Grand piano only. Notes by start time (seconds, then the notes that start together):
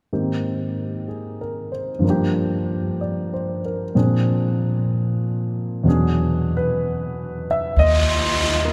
0.13 G#2 D#3 A#3 C4 G4
1.08 G#4
1.41 A#4
1.72 C5
1.99 G2 F3
2.05 A#3 D4
2.10 G4
3.01 D5
3.34 C5
3.66 A#4
3.95 A#2 F3 C4 D4 G#4
5.83 E2 B2 F#3 C#4
5.88 D4 G#4
6.57 B4
7.51 E5
7.79 D#5
8.65 A#3